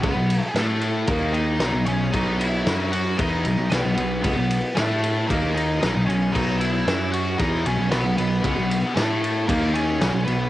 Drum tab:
CC |--------|--------|--------|x-------|
RD |xxxxxxxx|xxxxxxxx|xxxxxxxx|-xxxxxxx|
SD |--o---o-|--o---o-|--o---o-|--o---o-|
BD |o---o---|o---o---|o---o---|o---o---|

CC |--------|
RD |xxxxxxxx|
SD |--o---o-|
BD |o---o---|